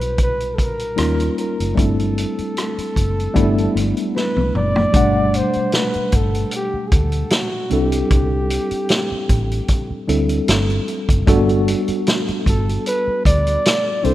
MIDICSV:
0, 0, Header, 1, 6, 480
1, 0, Start_track
1, 0, Key_signature, 1, "major"
1, 0, Tempo, 791557
1, 1074, Time_signature, 4, 2, 24, 8
1, 8576, End_track
2, 0, Start_track
2, 0, Title_t, "Flugelhorn"
2, 0, Program_c, 0, 56
2, 0, Note_on_c, 0, 71, 78
2, 121, Note_off_c, 0, 71, 0
2, 138, Note_on_c, 0, 71, 90
2, 332, Note_on_c, 0, 69, 58
2, 341, Note_off_c, 0, 71, 0
2, 375, Note_on_c, 0, 70, 89
2, 384, Note_off_c, 0, 69, 0
2, 844, Note_off_c, 0, 70, 0
2, 848, Note_on_c, 0, 70, 74
2, 1091, Note_on_c, 0, 69, 78
2, 1100, Note_off_c, 0, 70, 0
2, 2417, Note_off_c, 0, 69, 0
2, 2520, Note_on_c, 0, 71, 90
2, 2741, Note_off_c, 0, 71, 0
2, 2768, Note_on_c, 0, 74, 97
2, 3253, Note_on_c, 0, 72, 98
2, 3262, Note_off_c, 0, 74, 0
2, 3482, Note_on_c, 0, 71, 86
2, 3491, Note_off_c, 0, 72, 0
2, 3734, Note_on_c, 0, 69, 84
2, 3743, Note_off_c, 0, 71, 0
2, 3965, Note_off_c, 0, 69, 0
2, 3977, Note_on_c, 0, 67, 90
2, 4168, Note_on_c, 0, 68, 63
2, 4177, Note_off_c, 0, 67, 0
2, 4208, Note_on_c, 0, 69, 76
2, 4217, Note_off_c, 0, 68, 0
2, 4453, Note_on_c, 0, 66, 83
2, 4463, Note_off_c, 0, 69, 0
2, 4686, Note_on_c, 0, 67, 84
2, 4695, Note_off_c, 0, 66, 0
2, 6120, Note_off_c, 0, 67, 0
2, 7572, Note_on_c, 0, 69, 81
2, 7786, Note_off_c, 0, 69, 0
2, 7805, Note_on_c, 0, 71, 101
2, 8023, Note_off_c, 0, 71, 0
2, 8040, Note_on_c, 0, 74, 86
2, 8516, Note_on_c, 0, 72, 96
2, 8525, Note_off_c, 0, 74, 0
2, 8576, Note_off_c, 0, 72, 0
2, 8576, End_track
3, 0, Start_track
3, 0, Title_t, "Tine electric piano"
3, 0, Program_c, 1, 4
3, 0, Control_c, 1, 64, 127
3, 0, Note_on_c, 1, 47, 50
3, 0, Note_on_c, 1, 55, 59
3, 0, Note_on_c, 1, 62, 52
3, 0, Note_on_c, 1, 64, 49
3, 0, Note_on_c, 1, 66, 60
3, 568, Note_off_c, 1, 55, 0
3, 570, Note_off_c, 1, 47, 0
3, 571, Note_off_c, 1, 62, 0
3, 574, Note_off_c, 1, 64, 0
3, 576, Note_off_c, 1, 66, 0
3, 582, Note_on_c, 1, 55, 55
3, 585, Note_on_c, 1, 58, 51
3, 587, Note_on_c, 1, 61, 50
3, 587, Note_on_c, 1, 63, 50
3, 592, Note_on_c, 1, 65, 62
3, 602, Control_c, 1, 64, 0
3, 705, Control_c, 1, 64, 127
3, 1049, Note_off_c, 1, 55, 0
3, 1056, Note_on_c, 1, 55, 56
3, 1061, Note_on_c, 1, 57, 52
3, 1066, Note_on_c, 1, 60, 51
3, 1066, Note_on_c, 1, 62, 51
3, 1070, Note_off_c, 1, 58, 0
3, 1071, Note_off_c, 1, 61, 0
3, 1071, Note_off_c, 1, 63, 0
3, 1072, Note_on_c, 1, 64, 62
3, 1073, Note_off_c, 1, 65, 0
3, 1083, Control_c, 1, 64, 0
3, 1183, Control_c, 1, 64, 127
3, 2007, Note_off_c, 1, 55, 0
3, 2009, Note_off_c, 1, 57, 0
3, 2012, Note_off_c, 1, 60, 0
3, 2012, Note_off_c, 1, 62, 0
3, 2014, Note_off_c, 1, 64, 0
3, 2023, Note_on_c, 1, 55, 74
3, 2025, Note_on_c, 1, 57, 66
3, 2029, Note_on_c, 1, 59, 72
3, 2034, Note_on_c, 1, 62, 66
3, 2039, Note_on_c, 1, 64, 83
3, 2044, Control_c, 1, 64, 0
3, 2137, Control_c, 1, 64, 127
3, 2970, Note_off_c, 1, 55, 0
3, 2971, Note_off_c, 1, 57, 0
3, 2973, Note_off_c, 1, 59, 0
3, 2976, Note_off_c, 1, 62, 0
3, 2978, Note_off_c, 1, 64, 0
3, 2987, Note_on_c, 1, 55, 57
3, 2993, Note_on_c, 1, 57, 49
3, 2997, Note_on_c, 1, 47, 50
3, 3001, Note_on_c, 1, 62, 54
3, 3003, Control_c, 1, 64, 0
3, 3009, Note_on_c, 1, 78, 60
3, 3096, Control_c, 1, 64, 127
3, 4647, Note_off_c, 1, 55, 0
3, 4650, Note_off_c, 1, 57, 0
3, 4652, Note_off_c, 1, 47, 0
3, 4654, Note_off_c, 1, 62, 0
3, 4658, Note_off_c, 1, 78, 0
3, 4670, Note_on_c, 1, 55, 57
3, 4674, Note_on_c, 1, 60, 53
3, 4678, Note_on_c, 1, 62, 55
3, 4682, Note_on_c, 1, 64, 54
3, 4684, Control_c, 1, 64, 0
3, 4687, Note_on_c, 1, 69, 65
3, 4788, Control_c, 1, 64, 127
3, 6088, Note_off_c, 1, 55, 0
3, 6090, Note_off_c, 1, 60, 0
3, 6092, Note_off_c, 1, 62, 0
3, 6094, Note_off_c, 1, 64, 0
3, 6096, Note_off_c, 1, 69, 0
3, 6109, Note_on_c, 1, 55, 51
3, 6113, Note_on_c, 1, 62, 47
3, 6115, Note_on_c, 1, 60, 49
3, 6118, Note_on_c, 1, 64, 51
3, 6120, Note_on_c, 1, 69, 58
3, 6823, Note_off_c, 1, 55, 0
3, 6830, Note_on_c, 1, 55, 70
3, 6831, Note_off_c, 1, 62, 0
3, 6834, Note_off_c, 1, 60, 0
3, 6834, Note_on_c, 1, 57, 51
3, 6836, Note_off_c, 1, 64, 0
3, 6837, Note_off_c, 1, 69, 0
3, 6839, Note_on_c, 1, 62, 67
3, 6843, Control_c, 1, 64, 0
3, 6843, Note_on_c, 1, 66, 70
3, 6845, Note_on_c, 1, 69, 79
3, 6873, Note_on_c, 1, 59, 65
3, 6877, Note_off_c, 1, 57, 0
3, 6935, Control_c, 1, 64, 127
3, 8487, Note_off_c, 1, 55, 0
3, 8491, Note_off_c, 1, 62, 0
3, 8493, Note_off_c, 1, 66, 0
3, 8495, Note_off_c, 1, 69, 0
3, 8508, Note_off_c, 1, 59, 0
3, 8509, Note_on_c, 1, 55, 55
3, 8511, Note_on_c, 1, 60, 56
3, 8516, Note_on_c, 1, 62, 53
3, 8522, Control_c, 1, 64, 0
3, 8522, Note_on_c, 1, 64, 53
3, 8527, Note_on_c, 1, 69, 63
3, 8576, Note_off_c, 1, 55, 0
3, 8576, Note_off_c, 1, 60, 0
3, 8576, Note_off_c, 1, 62, 0
3, 8576, Note_off_c, 1, 64, 0
3, 8576, Note_off_c, 1, 69, 0
3, 8576, End_track
4, 0, Start_track
4, 0, Title_t, "Fingered electric bass"
4, 0, Program_c, 2, 33
4, 0, Note_on_c, 2, 35, 80
4, 571, Note_off_c, 2, 35, 0
4, 597, Note_on_c, 2, 39, 98
4, 778, Note_off_c, 2, 39, 0
4, 971, Note_on_c, 2, 30, 70
4, 1052, Note_off_c, 2, 30, 0
4, 1079, Note_on_c, 2, 31, 88
4, 1357, Note_off_c, 2, 31, 0
4, 1801, Note_on_c, 2, 30, 76
4, 1980, Note_off_c, 2, 30, 0
4, 2041, Note_on_c, 2, 31, 93
4, 2220, Note_off_c, 2, 31, 0
4, 2276, Note_on_c, 2, 31, 88
4, 2374, Note_off_c, 2, 31, 0
4, 2647, Note_on_c, 2, 36, 75
4, 2730, Note_off_c, 2, 36, 0
4, 2756, Note_on_c, 2, 30, 76
4, 2937, Note_off_c, 2, 30, 0
4, 2997, Note_on_c, 2, 31, 81
4, 3276, Note_off_c, 2, 31, 0
4, 3716, Note_on_c, 2, 31, 78
4, 3898, Note_off_c, 2, 31, 0
4, 4197, Note_on_c, 2, 38, 93
4, 4378, Note_off_c, 2, 38, 0
4, 4677, Note_on_c, 2, 36, 88
4, 4858, Note_off_c, 2, 36, 0
4, 4920, Note_on_c, 2, 36, 86
4, 5197, Note_off_c, 2, 36, 0
4, 5638, Note_on_c, 2, 33, 89
4, 5818, Note_off_c, 2, 33, 0
4, 6117, Note_on_c, 2, 38, 83
4, 6298, Note_off_c, 2, 38, 0
4, 6358, Note_on_c, 2, 31, 99
4, 6538, Note_off_c, 2, 31, 0
4, 6726, Note_on_c, 2, 30, 74
4, 6809, Note_off_c, 2, 30, 0
4, 6837, Note_on_c, 2, 31, 92
4, 7115, Note_off_c, 2, 31, 0
4, 7560, Note_on_c, 2, 31, 78
4, 7739, Note_off_c, 2, 31, 0
4, 8040, Note_on_c, 2, 38, 86
4, 8219, Note_off_c, 2, 38, 0
4, 8517, Note_on_c, 2, 36, 86
4, 8576, Note_off_c, 2, 36, 0
4, 8576, End_track
5, 0, Start_track
5, 0, Title_t, "Muted fingered electric bass strokes"
5, 1449, Note_on_c, 9, 29, 40
5, 1509, Note_off_c, 9, 29, 0
5, 1686, Note_on_c, 9, 29, 44
5, 1747, Note_off_c, 9, 29, 0
5, 3372, Note_on_c, 9, 29, 45
5, 3433, Note_off_c, 9, 29, 0
5, 3611, Note_on_c, 9, 29, 40
5, 3671, Note_off_c, 9, 29, 0
5, 4086, Note_on_c, 9, 29, 47
5, 4146, Note_off_c, 9, 29, 0
5, 5284, Note_on_c, 9, 29, 43
5, 5344, Note_off_c, 9, 29, 0
5, 5529, Note_on_c, 9, 29, 41
5, 5589, Note_off_c, 9, 29, 0
5, 6006, Note_on_c, 9, 29, 50
5, 6067, Note_off_c, 9, 29, 0
5, 7207, Note_on_c, 9, 29, 45
5, 7268, Note_off_c, 9, 29, 0
5, 7451, Note_on_c, 9, 29, 41
5, 7512, Note_off_c, 9, 29, 0
5, 7929, Note_on_c, 9, 29, 47
5, 7990, Note_off_c, 9, 29, 0
5, 8576, End_track
6, 0, Start_track
6, 0, Title_t, "Drums"
6, 7, Note_on_c, 9, 42, 43
6, 68, Note_off_c, 9, 42, 0
6, 109, Note_on_c, 9, 42, 72
6, 111, Note_on_c, 9, 36, 84
6, 170, Note_off_c, 9, 42, 0
6, 172, Note_off_c, 9, 36, 0
6, 245, Note_on_c, 9, 42, 39
6, 305, Note_off_c, 9, 42, 0
6, 354, Note_on_c, 9, 36, 79
6, 357, Note_on_c, 9, 42, 72
6, 415, Note_off_c, 9, 36, 0
6, 418, Note_off_c, 9, 42, 0
6, 482, Note_on_c, 9, 42, 49
6, 542, Note_off_c, 9, 42, 0
6, 592, Note_on_c, 9, 42, 104
6, 597, Note_on_c, 9, 37, 99
6, 653, Note_off_c, 9, 42, 0
6, 658, Note_off_c, 9, 37, 0
6, 726, Note_on_c, 9, 42, 48
6, 787, Note_off_c, 9, 42, 0
6, 837, Note_on_c, 9, 42, 48
6, 897, Note_off_c, 9, 42, 0
6, 971, Note_on_c, 9, 42, 59
6, 1032, Note_off_c, 9, 42, 0
6, 1076, Note_on_c, 9, 36, 94
6, 1083, Note_on_c, 9, 42, 76
6, 1137, Note_off_c, 9, 36, 0
6, 1144, Note_off_c, 9, 42, 0
6, 1210, Note_on_c, 9, 42, 52
6, 1270, Note_off_c, 9, 42, 0
6, 1321, Note_on_c, 9, 42, 75
6, 1381, Note_off_c, 9, 42, 0
6, 1446, Note_on_c, 9, 42, 38
6, 1507, Note_off_c, 9, 42, 0
6, 1558, Note_on_c, 9, 42, 72
6, 1565, Note_on_c, 9, 37, 88
6, 1618, Note_off_c, 9, 42, 0
6, 1626, Note_off_c, 9, 37, 0
6, 1689, Note_on_c, 9, 42, 45
6, 1749, Note_off_c, 9, 42, 0
6, 1797, Note_on_c, 9, 36, 77
6, 1801, Note_on_c, 9, 42, 61
6, 1858, Note_off_c, 9, 36, 0
6, 1861, Note_off_c, 9, 42, 0
6, 1938, Note_on_c, 9, 42, 40
6, 1999, Note_off_c, 9, 42, 0
6, 2037, Note_on_c, 9, 36, 85
6, 2038, Note_on_c, 9, 42, 69
6, 2098, Note_off_c, 9, 36, 0
6, 2099, Note_off_c, 9, 42, 0
6, 2172, Note_on_c, 9, 42, 39
6, 2233, Note_off_c, 9, 42, 0
6, 2282, Note_on_c, 9, 37, 31
6, 2285, Note_on_c, 9, 42, 74
6, 2342, Note_off_c, 9, 37, 0
6, 2346, Note_off_c, 9, 42, 0
6, 2406, Note_on_c, 9, 42, 46
6, 2467, Note_off_c, 9, 42, 0
6, 2525, Note_on_c, 9, 38, 49
6, 2586, Note_off_c, 9, 38, 0
6, 2647, Note_on_c, 9, 48, 55
6, 2707, Note_off_c, 9, 48, 0
6, 2759, Note_on_c, 9, 45, 68
6, 2819, Note_off_c, 9, 45, 0
6, 2885, Note_on_c, 9, 43, 82
6, 2945, Note_off_c, 9, 43, 0
6, 2993, Note_on_c, 9, 42, 83
6, 2995, Note_on_c, 9, 36, 94
6, 3054, Note_off_c, 9, 42, 0
6, 3055, Note_off_c, 9, 36, 0
6, 3237, Note_on_c, 9, 42, 70
6, 3297, Note_off_c, 9, 42, 0
6, 3356, Note_on_c, 9, 42, 41
6, 3416, Note_off_c, 9, 42, 0
6, 3470, Note_on_c, 9, 42, 72
6, 3477, Note_on_c, 9, 38, 88
6, 3530, Note_off_c, 9, 42, 0
6, 3538, Note_off_c, 9, 38, 0
6, 3599, Note_on_c, 9, 42, 30
6, 3660, Note_off_c, 9, 42, 0
6, 3711, Note_on_c, 9, 42, 64
6, 3715, Note_on_c, 9, 36, 81
6, 3772, Note_off_c, 9, 42, 0
6, 3776, Note_off_c, 9, 36, 0
6, 3848, Note_on_c, 9, 42, 45
6, 3908, Note_off_c, 9, 42, 0
6, 3949, Note_on_c, 9, 42, 79
6, 4009, Note_off_c, 9, 42, 0
6, 4194, Note_on_c, 9, 42, 78
6, 4195, Note_on_c, 9, 36, 87
6, 4255, Note_off_c, 9, 42, 0
6, 4256, Note_off_c, 9, 36, 0
6, 4316, Note_on_c, 9, 42, 52
6, 4377, Note_off_c, 9, 42, 0
6, 4429, Note_on_c, 9, 42, 98
6, 4434, Note_on_c, 9, 38, 99
6, 4490, Note_off_c, 9, 42, 0
6, 4495, Note_off_c, 9, 38, 0
6, 4672, Note_on_c, 9, 42, 50
6, 4733, Note_off_c, 9, 42, 0
6, 4803, Note_on_c, 9, 42, 61
6, 4863, Note_off_c, 9, 42, 0
6, 4915, Note_on_c, 9, 42, 83
6, 4916, Note_on_c, 9, 36, 100
6, 4976, Note_off_c, 9, 42, 0
6, 4977, Note_off_c, 9, 36, 0
6, 5156, Note_on_c, 9, 42, 75
6, 5216, Note_off_c, 9, 42, 0
6, 5281, Note_on_c, 9, 42, 45
6, 5341, Note_off_c, 9, 42, 0
6, 5390, Note_on_c, 9, 42, 78
6, 5398, Note_on_c, 9, 38, 94
6, 5451, Note_off_c, 9, 42, 0
6, 5458, Note_off_c, 9, 38, 0
6, 5635, Note_on_c, 9, 42, 62
6, 5636, Note_on_c, 9, 36, 86
6, 5696, Note_off_c, 9, 42, 0
6, 5697, Note_off_c, 9, 36, 0
6, 5770, Note_on_c, 9, 42, 45
6, 5831, Note_off_c, 9, 42, 0
6, 5871, Note_on_c, 9, 42, 72
6, 5875, Note_on_c, 9, 36, 86
6, 5932, Note_off_c, 9, 42, 0
6, 5935, Note_off_c, 9, 36, 0
6, 6118, Note_on_c, 9, 42, 75
6, 6179, Note_off_c, 9, 42, 0
6, 6240, Note_on_c, 9, 42, 49
6, 6301, Note_off_c, 9, 42, 0
6, 6355, Note_on_c, 9, 42, 104
6, 6360, Note_on_c, 9, 38, 102
6, 6416, Note_off_c, 9, 42, 0
6, 6421, Note_off_c, 9, 38, 0
6, 6487, Note_on_c, 9, 42, 31
6, 6547, Note_off_c, 9, 42, 0
6, 6597, Note_on_c, 9, 42, 48
6, 6657, Note_off_c, 9, 42, 0
6, 6723, Note_on_c, 9, 36, 88
6, 6730, Note_on_c, 9, 42, 59
6, 6784, Note_off_c, 9, 36, 0
6, 6790, Note_off_c, 9, 42, 0
6, 6836, Note_on_c, 9, 36, 100
6, 6840, Note_on_c, 9, 42, 79
6, 6897, Note_off_c, 9, 36, 0
6, 6901, Note_off_c, 9, 42, 0
6, 6968, Note_on_c, 9, 42, 35
6, 7029, Note_off_c, 9, 42, 0
6, 7082, Note_on_c, 9, 42, 78
6, 7143, Note_off_c, 9, 42, 0
6, 7202, Note_on_c, 9, 42, 47
6, 7263, Note_off_c, 9, 42, 0
6, 7317, Note_on_c, 9, 42, 77
6, 7325, Note_on_c, 9, 38, 89
6, 7378, Note_off_c, 9, 42, 0
6, 7385, Note_off_c, 9, 38, 0
6, 7448, Note_on_c, 9, 42, 34
6, 7509, Note_off_c, 9, 42, 0
6, 7558, Note_on_c, 9, 36, 80
6, 7562, Note_on_c, 9, 42, 61
6, 7618, Note_off_c, 9, 36, 0
6, 7623, Note_off_c, 9, 42, 0
6, 7697, Note_on_c, 9, 42, 40
6, 7757, Note_off_c, 9, 42, 0
6, 7799, Note_on_c, 9, 42, 76
6, 7859, Note_off_c, 9, 42, 0
6, 8037, Note_on_c, 9, 36, 95
6, 8041, Note_on_c, 9, 42, 83
6, 8098, Note_off_c, 9, 36, 0
6, 8102, Note_off_c, 9, 42, 0
6, 8166, Note_on_c, 9, 42, 53
6, 8226, Note_off_c, 9, 42, 0
6, 8280, Note_on_c, 9, 42, 104
6, 8286, Note_on_c, 9, 38, 95
6, 8341, Note_off_c, 9, 42, 0
6, 8346, Note_off_c, 9, 38, 0
6, 8517, Note_on_c, 9, 42, 52
6, 8576, Note_off_c, 9, 42, 0
6, 8576, End_track
0, 0, End_of_file